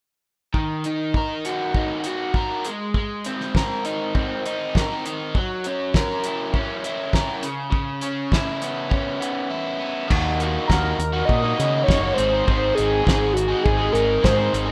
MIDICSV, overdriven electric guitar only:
0, 0, Header, 1, 3, 480
1, 0, Start_track
1, 0, Tempo, 598802
1, 436, Time_signature, 4, 2, 24, 8
1, 6195, Tempo, 592300
1, 11859, End_track
2, 0, Start_track
2, 0, Title_t, "Overdriven electric guitar"
2, 0, Program_c, 0, 29
2, 432, Note_on_c, 0, 51, 57
2, 687, Note_on_c, 0, 63, 51
2, 930, Note_on_c, 0, 70, 59
2, 1164, Note_on_c, 0, 66, 62
2, 1400, Note_off_c, 0, 63, 0
2, 1409, Note_on_c, 0, 63, 54
2, 1637, Note_off_c, 0, 51, 0
2, 1642, Note_off_c, 0, 66, 0
2, 1652, Note_on_c, 0, 66, 63
2, 1887, Note_off_c, 0, 70, 0
2, 1890, Note_on_c, 0, 70, 67
2, 2125, Note_off_c, 0, 63, 0
2, 2126, Note_off_c, 0, 66, 0
2, 2131, Note_on_c, 0, 56, 60
2, 2155, Note_off_c, 0, 70, 0
2, 2359, Note_off_c, 0, 56, 0
2, 2368, Note_on_c, 0, 56, 60
2, 2614, Note_on_c, 0, 60, 60
2, 2858, Note_on_c, 0, 70, 66
2, 3090, Note_on_c, 0, 63, 57
2, 3314, Note_off_c, 0, 60, 0
2, 3324, Note_on_c, 0, 60, 59
2, 3565, Note_off_c, 0, 56, 0
2, 3567, Note_off_c, 0, 63, 0
2, 3576, Note_on_c, 0, 63, 65
2, 3808, Note_off_c, 0, 70, 0
2, 3818, Note_on_c, 0, 70, 69
2, 4043, Note_off_c, 0, 63, 0
2, 4053, Note_on_c, 0, 63, 63
2, 4282, Note_off_c, 0, 60, 0
2, 4287, Note_off_c, 0, 63, 0
2, 4289, Note_off_c, 0, 70, 0
2, 4295, Note_on_c, 0, 54, 68
2, 4543, Note_on_c, 0, 61, 54
2, 4771, Note_on_c, 0, 70, 70
2, 5018, Note_on_c, 0, 64, 57
2, 5246, Note_off_c, 0, 61, 0
2, 5256, Note_on_c, 0, 61, 63
2, 5482, Note_off_c, 0, 64, 0
2, 5485, Note_off_c, 0, 54, 0
2, 5491, Note_on_c, 0, 64, 62
2, 5713, Note_off_c, 0, 70, 0
2, 5723, Note_on_c, 0, 70, 66
2, 5952, Note_on_c, 0, 49, 57
2, 5959, Note_off_c, 0, 70, 0
2, 5963, Note_off_c, 0, 64, 0
2, 5964, Note_off_c, 0, 61, 0
2, 6173, Note_off_c, 0, 49, 0
2, 6182, Note_on_c, 0, 49, 61
2, 6433, Note_on_c, 0, 61, 54
2, 6678, Note_on_c, 0, 64, 63
2, 6913, Note_on_c, 0, 59, 60
2, 7133, Note_off_c, 0, 61, 0
2, 7143, Note_on_c, 0, 61, 59
2, 7383, Note_off_c, 0, 59, 0
2, 7392, Note_on_c, 0, 59, 57
2, 7394, Note_off_c, 0, 49, 0
2, 7623, Note_off_c, 0, 64, 0
2, 7633, Note_on_c, 0, 64, 66
2, 7860, Note_off_c, 0, 59, 0
2, 7870, Note_on_c, 0, 59, 59
2, 8102, Note_on_c, 0, 51, 80
2, 8114, Note_off_c, 0, 61, 0
2, 8116, Note_off_c, 0, 59, 0
2, 8117, Note_on_c, 0, 58, 76
2, 8118, Note_off_c, 0, 64, 0
2, 8122, Note_on_c, 0, 63, 83
2, 8130, Note_on_c, 0, 66, 91
2, 8345, Note_off_c, 0, 51, 0
2, 8355, Note_on_c, 0, 51, 65
2, 8367, Note_off_c, 0, 58, 0
2, 8370, Note_on_c, 0, 58, 61
2, 8375, Note_off_c, 0, 63, 0
2, 8377, Note_off_c, 0, 66, 0
2, 8379, Note_on_c, 0, 63, 73
2, 8387, Note_on_c, 0, 66, 67
2, 8582, Note_off_c, 0, 51, 0
2, 8592, Note_on_c, 0, 51, 80
2, 8597, Note_off_c, 0, 58, 0
2, 8600, Note_on_c, 0, 58, 82
2, 8605, Note_off_c, 0, 63, 0
2, 8609, Note_on_c, 0, 63, 84
2, 8611, Note_off_c, 0, 66, 0
2, 8621, Note_on_c, 0, 66, 91
2, 8825, Note_off_c, 0, 51, 0
2, 8833, Note_off_c, 0, 58, 0
2, 8833, Note_off_c, 0, 66, 0
2, 8834, Note_off_c, 0, 63, 0
2, 8949, Note_on_c, 0, 66, 68
2, 8963, Note_on_c, 0, 63, 59
2, 8979, Note_on_c, 0, 58, 55
2, 9180, Note_off_c, 0, 66, 0
2, 9190, Note_on_c, 0, 66, 65
2, 9194, Note_off_c, 0, 63, 0
2, 9204, Note_on_c, 0, 63, 60
2, 9209, Note_off_c, 0, 58, 0
2, 9212, Note_on_c, 0, 58, 53
2, 9308, Note_on_c, 0, 51, 70
2, 9320, Note_off_c, 0, 58, 0
2, 9323, Note_off_c, 0, 63, 0
2, 9323, Note_on_c, 0, 58, 72
2, 9332, Note_off_c, 0, 66, 0
2, 9333, Note_on_c, 0, 63, 84
2, 9342, Note_on_c, 0, 66, 75
2, 9530, Note_off_c, 0, 51, 0
2, 9540, Note_on_c, 0, 51, 77
2, 9551, Note_off_c, 0, 58, 0
2, 9553, Note_off_c, 0, 63, 0
2, 9555, Note_on_c, 0, 58, 81
2, 9563, Note_off_c, 0, 66, 0
2, 9563, Note_on_c, 0, 63, 96
2, 9573, Note_on_c, 0, 66, 90
2, 9653, Note_off_c, 0, 66, 0
2, 9663, Note_on_c, 0, 66, 66
2, 9671, Note_off_c, 0, 63, 0
2, 9681, Note_on_c, 0, 63, 65
2, 9691, Note_off_c, 0, 58, 0
2, 9694, Note_on_c, 0, 58, 54
2, 9776, Note_off_c, 0, 51, 0
2, 9778, Note_off_c, 0, 66, 0
2, 9779, Note_on_c, 0, 44, 89
2, 9786, Note_off_c, 0, 63, 0
2, 9791, Note_on_c, 0, 51, 85
2, 9795, Note_on_c, 0, 56, 86
2, 9796, Note_off_c, 0, 58, 0
2, 9799, Note_on_c, 0, 60, 82
2, 9802, Note_on_c, 0, 63, 87
2, 9814, Note_on_c, 0, 68, 86
2, 9892, Note_off_c, 0, 68, 0
2, 9902, Note_off_c, 0, 63, 0
2, 9902, Note_on_c, 0, 68, 61
2, 9912, Note_on_c, 0, 63, 60
2, 9913, Note_off_c, 0, 60, 0
2, 9923, Note_off_c, 0, 56, 0
2, 9923, Note_on_c, 0, 60, 55
2, 9933, Note_on_c, 0, 56, 51
2, 10014, Note_off_c, 0, 44, 0
2, 10024, Note_on_c, 0, 44, 68
2, 10025, Note_off_c, 0, 51, 0
2, 10032, Note_off_c, 0, 56, 0
2, 10035, Note_on_c, 0, 51, 81
2, 10036, Note_off_c, 0, 60, 0
2, 10042, Note_on_c, 0, 56, 82
2, 10043, Note_off_c, 0, 63, 0
2, 10045, Note_off_c, 0, 68, 0
2, 10046, Note_on_c, 0, 60, 84
2, 10053, Note_on_c, 0, 63, 87
2, 10055, Note_on_c, 0, 68, 84
2, 10255, Note_off_c, 0, 56, 0
2, 10265, Note_off_c, 0, 60, 0
2, 10265, Note_on_c, 0, 56, 63
2, 10274, Note_on_c, 0, 60, 77
2, 10277, Note_off_c, 0, 63, 0
2, 10284, Note_off_c, 0, 68, 0
2, 10286, Note_on_c, 0, 63, 74
2, 10294, Note_on_c, 0, 68, 64
2, 10481, Note_off_c, 0, 44, 0
2, 10491, Note_off_c, 0, 51, 0
2, 10491, Note_on_c, 0, 44, 77
2, 10501, Note_off_c, 0, 56, 0
2, 10501, Note_on_c, 0, 51, 84
2, 10505, Note_off_c, 0, 60, 0
2, 10509, Note_off_c, 0, 63, 0
2, 10510, Note_on_c, 0, 56, 78
2, 10512, Note_off_c, 0, 68, 0
2, 10515, Note_on_c, 0, 60, 88
2, 10519, Note_on_c, 0, 63, 98
2, 10521, Note_on_c, 0, 68, 89
2, 10734, Note_off_c, 0, 56, 0
2, 10739, Note_off_c, 0, 60, 0
2, 10744, Note_off_c, 0, 63, 0
2, 10744, Note_off_c, 0, 68, 0
2, 10857, Note_on_c, 0, 68, 67
2, 10866, Note_on_c, 0, 63, 68
2, 10879, Note_on_c, 0, 60, 63
2, 10883, Note_on_c, 0, 56, 59
2, 10984, Note_off_c, 0, 44, 0
2, 10989, Note_off_c, 0, 51, 0
2, 11087, Note_off_c, 0, 68, 0
2, 11091, Note_off_c, 0, 63, 0
2, 11096, Note_on_c, 0, 68, 64
2, 11101, Note_on_c, 0, 63, 63
2, 11105, Note_off_c, 0, 60, 0
2, 11111, Note_off_c, 0, 56, 0
2, 11115, Note_on_c, 0, 60, 52
2, 11121, Note_on_c, 0, 56, 51
2, 11206, Note_off_c, 0, 56, 0
2, 11215, Note_off_c, 0, 60, 0
2, 11216, Note_on_c, 0, 56, 75
2, 11220, Note_off_c, 0, 63, 0
2, 11225, Note_on_c, 0, 60, 71
2, 11230, Note_on_c, 0, 63, 77
2, 11234, Note_off_c, 0, 68, 0
2, 11244, Note_on_c, 0, 68, 84
2, 11454, Note_on_c, 0, 44, 84
2, 11457, Note_off_c, 0, 56, 0
2, 11464, Note_off_c, 0, 60, 0
2, 11465, Note_on_c, 0, 51, 85
2, 11466, Note_on_c, 0, 56, 97
2, 11471, Note_off_c, 0, 63, 0
2, 11474, Note_off_c, 0, 68, 0
2, 11474, Note_on_c, 0, 60, 99
2, 11481, Note_on_c, 0, 63, 96
2, 11484, Note_on_c, 0, 68, 89
2, 11567, Note_off_c, 0, 68, 0
2, 11577, Note_on_c, 0, 68, 68
2, 11578, Note_off_c, 0, 63, 0
2, 11586, Note_off_c, 0, 60, 0
2, 11588, Note_on_c, 0, 63, 62
2, 11595, Note_on_c, 0, 60, 59
2, 11598, Note_off_c, 0, 56, 0
2, 11608, Note_on_c, 0, 56, 55
2, 11688, Note_off_c, 0, 56, 0
2, 11697, Note_off_c, 0, 60, 0
2, 11698, Note_on_c, 0, 56, 70
2, 11707, Note_on_c, 0, 60, 72
2, 11708, Note_off_c, 0, 63, 0
2, 11718, Note_on_c, 0, 63, 77
2, 11719, Note_off_c, 0, 68, 0
2, 11729, Note_on_c, 0, 68, 82
2, 11800, Note_off_c, 0, 68, 0
2, 11810, Note_on_c, 0, 68, 66
2, 11819, Note_off_c, 0, 63, 0
2, 11823, Note_off_c, 0, 60, 0
2, 11824, Note_off_c, 0, 44, 0
2, 11828, Note_on_c, 0, 63, 57
2, 11829, Note_off_c, 0, 51, 0
2, 11833, Note_off_c, 0, 56, 0
2, 11833, Note_on_c, 0, 60, 59
2, 11859, Note_off_c, 0, 60, 0
2, 11859, Note_off_c, 0, 63, 0
2, 11859, Note_off_c, 0, 68, 0
2, 11859, End_track
3, 0, Start_track
3, 0, Title_t, "Muted overdriven electric guitar strokes"
3, 8835, Note_on_c, 9, 29, 41
3, 8916, Note_off_c, 9, 29, 0
3, 10743, Note_on_c, 9, 29, 42
3, 10824, Note_off_c, 9, 29, 0
3, 11859, End_track
0, 0, End_of_file